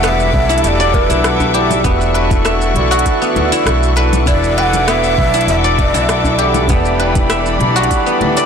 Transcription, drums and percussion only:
0.04 cross-stick, closed hi-hat, shaker
0.20 djembe slap, shaker
0.34 kick
0.50 closed hi-hat, djembe slap, shaker
0.58 closed hi-hat
0.64 closed hi-hat, shaker
0.81 shaker
0.94 kick, closed hi-hat
1.10 closed hi-hat, shaker
1.24 cross-stick, closed hi-hat, shaker
1.40 djembe tone, djembe bass, shaker
1.55 closed hi-hat
1.71 closed hi-hat, low conga, shaker
1.84 kick, closed hi-hat, djembe bass, shaker
2.01 shaker
2.15 closed hi-hat
2.31 kick, closed hi-hat, low conga, shaker
2.45 cross-stick, closed hi-hat, shaker
2.62 shaker
2.76 closed hi-hat
2.92 closed hi-hat, djembe slap, shaker
2.99 closed hi-hat
3.06 kick, closed hi-hat, shaker
3.22 shaker
3.36 closed hi-hat, djembe slap, low conga
3.52 closed hi-hat, shaker
3.67 cross-stick, closed hi-hat, shaker
3.83 shaker
3.96 closed hi-hat, djembe slap
4.13 closed hi-hat, low conga, shaker
4.26 kick, closed hi-hat, djembe bass, shaker
4.42 djembe tone, shaker
4.58 closed hi-hat
4.73 closed hi-hat, djembe tone, low conga, shaker
4.88 cross-stick, closed hi-hat, shaker
5.03 djembe slap, shaker
5.18 kick
5.34 closed hi-hat, djembe slap, shaker
5.41 closed hi-hat
5.48 closed hi-hat, shaker
5.64 shaker
5.79 kick, closed hi-hat
5.95 closed hi-hat, shaker
6.09 cross-stick, closed hi-hat, shaker
6.24 djembe tone, djembe bass, shaker
6.39 closed hi-hat
6.54 closed hi-hat, low conga, shaker
6.68 kick, closed hi-hat, djembe bass, shaker
6.85 shaker
7.00 closed hi-hat
7.15 kick, closed hi-hat, low conga, shaker
7.30 cross-stick, closed hi-hat, shaker
7.46 shaker
7.60 closed hi-hat
7.76 closed hi-hat, djembe slap, shaker
7.83 closed hi-hat
7.91 kick, closed hi-hat, shaker
8.07 shaker
8.21 closed hi-hat, djembe slap, low conga
8.37 closed hi-hat, shaker

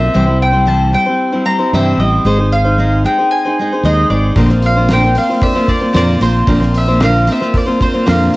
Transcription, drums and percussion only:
4.36 kick, open hi-hat
4.49 snare
4.62 open hi-hat
4.88 snare, open hi-hat
5.15 open hi-hat
5.42 kick, open hi-hat
5.68 kick, open hi-hat
5.94 snare, open hi-hat
6.21 open hi-hat
6.47 kick, open hi-hat
6.61 snare
6.74 open hi-hat
7.00 snare, open hi-hat
7.27 open hi-hat
7.41 snare
7.54 kick, open hi-hat
7.81 kick, open hi-hat
8.07 snare, open hi-hat

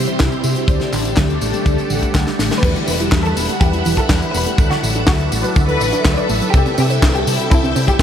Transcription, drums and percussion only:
0.06 closed hi-hat, tambourine
0.19 kick, snare, clap, closed hi-hat, tambourine
0.32 closed hi-hat, tambourine
0.44 open hi-hat, tambourine
0.56 closed hi-hat, tambourine
0.68 kick, closed hi-hat, tambourine
0.80 snare, closed hi-hat, tambourine
0.93 clap, open hi-hat, tambourine
1.05 closed hi-hat, tambourine
1.16 kick, snare, clap, closed hi-hat, tambourine
1.29 closed hi-hat, tambourine
1.41 open hi-hat, tambourine
1.54 closed hi-hat, tambourine
1.66 kick, closed hi-hat, tambourine
1.78 closed hi-hat, tambourine
1.90 open hi-hat, tambourine
2.03 kick, closed hi-hat, tambourine
2.15 kick, snare, clap, closed hi-hat, tambourine
2.27 snare, closed hi-hat, tambourine
2.39 snare, open hi-hat, tambourine
2.51 snare, closed hi-hat, tambourine
2.63 kick, closed hi-hat, crash, tambourine
2.76 closed hi-hat, tambourine
2.88 open hi-hat, tambourine
3.00 closed hi-hat, tambourine
3.12 kick, snare, clap, closed hi-hat, tambourine
3.25 closed hi-hat, tambourine
3.37 open hi-hat, tambourine
3.49 closed hi-hat, tambourine
3.61 kick, closed hi-hat, tambourine
3.73 closed hi-hat, tambourine
3.85 open hi-hat, tambourine
3.97 kick, closed hi-hat, tambourine
4.09 kick, snare, clap, closed hi-hat, tambourine
4.22 closed hi-hat, tambourine
4.34 open hi-hat, tambourine
4.46 closed hi-hat, tambourine
4.58 kick, closed hi-hat, tambourine
4.71 snare, closed hi-hat, tambourine
4.83 open hi-hat, tambourine
4.95 closed hi-hat, tambourine
5.07 kick, snare, clap, closed hi-hat, tambourine
5.19 closed hi-hat, tambourine
5.32 open hi-hat, tambourine
5.44 closed hi-hat, tambourine
5.56 kick, closed hi-hat, tambourine
5.68 closed hi-hat, tambourine
5.80 open hi-hat, tambourine
5.92 closed hi-hat, tambourine
6.05 kick, snare, clap, closed hi-hat, tambourine
6.17 closed hi-hat, tambourine
6.29 open hi-hat, tambourine
6.41 closed hi-hat, tambourine
6.54 kick, closed hi-hat, tambourine
6.66 closed hi-hat, tambourine
6.78 open hi-hat, tambourine
6.90 closed hi-hat, tambourine
7.02 kick, snare, clap, closed hi-hat, tambourine
7.15 closed hi-hat, tambourine
7.27 open hi-hat, tambourine
7.39 closed hi-hat, tambourine
7.51 kick, closed hi-hat, tambourine
7.64 closed hi-hat, tambourine
7.76 open hi-hat, tambourine
7.88 kick, closed hi-hat, tambourine
7.99 kick

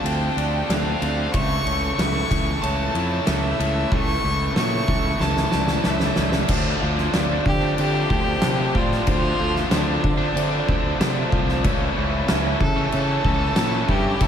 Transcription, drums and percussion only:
0.06 ride
0.38 ride
0.70 snare, ride
1.02 ride
1.34 kick, ride
1.67 ride
1.99 snare, ride
2.31 kick, ride
2.64 ride
2.95 ride
3.27 snare, ride
3.60 ride
3.92 kick
4.56 snare
4.88 kick
5.21 snare
5.37 snare
5.52 snare
5.68 snare
5.84 snare
6.00 snare
6.16 snare
6.32 snare
6.48 kick, crash
6.98 snare
7.14 snare, crash
7.46 kick
7.78 crash
8.10 kick
8.42 snare, crash
8.75 kick
8.92 snare
9.07 kick, crash
9.56 snare
9.71 snare, crash
10.04 kick
10.37 crash
10.69 kick
11.01 snare, crash
11.32 kick
11.49 snare
11.64 kick, crash
12.28 snare, crash
12.61 kick
12.92 crash
13.25 kick
13.56 snare, crash
13.89 kick
14.20 kick, crash

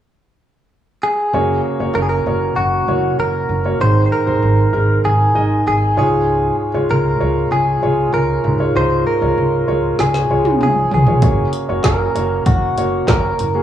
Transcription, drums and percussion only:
9.99 snare
10.14 snare
10.45 high tom
10.61 mid tom
10.91 floor tom
11.07 floor tom
11.22 kick, closed hi-hat
11.53 closed hi-hat
11.84 kick, snare, clap, closed hi-hat
12.16 closed hi-hat
12.46 kick, closed hi-hat
12.78 closed hi-hat
13.08 kick, snare, clap, closed hi-hat
13.39 closed hi-hat

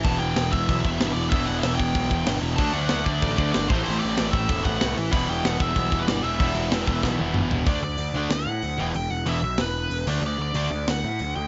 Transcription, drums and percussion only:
0.03 kick, crash
0.20 crash
0.36 snare, crash
0.52 kick, crash
0.69 kick, crash
0.84 kick, crash
1.00 snare, crash
1.16 crash
1.32 kick, crash
1.47 crash
1.63 snare, crash
1.80 kick, crash
1.95 kick, crash
2.11 kick, crash
2.27 snare, crash
2.43 crash
2.58 kick, crash
2.73 crash
2.89 snare, crash
3.06 kick, crash
3.22 kick, crash
3.38 kick, crash
3.54 snare, crash
3.70 kick, crash
3.86 crash
4.02 crash
4.17 snare, crash
4.33 kick, crash
4.49 kick, crash
4.65 kick, crash
4.81 snare, crash
4.97 crash
5.13 kick, crash
5.29 crash
5.45 snare, crash
5.60 kick, crash
5.76 kick, crash
5.92 kick, crash
6.08 snare, crash
6.24 crash
6.40 kick, crash
6.55 crash
6.72 snare, crash
6.87 kick, crash
7.03 kick, snare
7.19 high tom
7.34 mid tom
7.51 floor tom
7.66 kick, open hi-hat
7.98 open hi-hat
8.30 snare, open hi-hat
8.62 open hi-hat
8.94 open hi-hat
9.26 open hi-hat
9.58 snare, open hi-hat
9.91 open hi-hat
10.07 crash
10.54 open hi-hat
10.88 snare, open hi-hat
11.19 open hi-hat

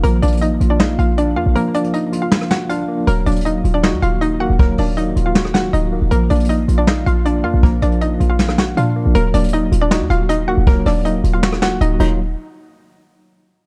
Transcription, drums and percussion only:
0.04 closed hi-hat
0.22 closed hi-hat, open hi-hat
0.27 closed hi-hat
0.32 closed hi-hat
0.37 closed hi-hat
0.42 closed hi-hat
0.61 closed hi-hat
0.80 snare
0.99 closed hi-hat
1.18 closed hi-hat
1.56 closed hi-hat
1.74 closed hi-hat, open hi-hat
1.84 closed hi-hat
1.94 closed hi-hat
2.13 closed hi-hat
2.32 snare
2.41 cross-stick
2.51 snare
2.70 closed hi-hat
3.07 closed hi-hat
3.26 closed hi-hat, open hi-hat
3.31 closed hi-hat
3.36 closed hi-hat
3.41 closed hi-hat
3.46 closed hi-hat
3.65 closed hi-hat
3.83 snare
4.03 closed hi-hat
4.21 closed hi-hat
4.59 kick, closed hi-hat
4.78 open hi-hat
4.97 closed hi-hat
5.16 closed hi-hat
5.35 snare
5.45 cross-stick
5.54 snare
5.73 closed hi-hat
6.11 closed hi-hat
6.30 closed hi-hat, open hi-hat
6.35 closed hi-hat
6.40 closed hi-hat
6.44 closed hi-hat
6.49 closed hi-hat
6.68 closed hi-hat
6.87 snare
7.07 closed hi-hat
7.25 closed hi-hat
7.63 kick, closed hi-hat
7.82 closed hi-hat, open hi-hat
7.92 closed hi-hat
8.01 closed hi-hat
8.20 closed hi-hat
8.39 snare
8.49 cross-stick
8.58 snare
8.77 closed hi-hat
9.15 closed hi-hat
9.34 closed hi-hat, open hi-hat
9.39 closed hi-hat
9.44 closed hi-hat
9.48 closed hi-hat
9.53 closed hi-hat
9.72 closed hi-hat
9.91 snare, closed hi-hat
10.10 closed hi-hat
10.29 closed hi-hat
10.67 kick, closed hi-hat
10.85 cross-stick, open hi-hat
11.05 closed hi-hat
11.24 closed hi-hat
11.43 snare, closed hi-hat
11.52 cross-stick
11.62 snare, closed hi-hat
11.81 closed hi-hat
12.00 crash

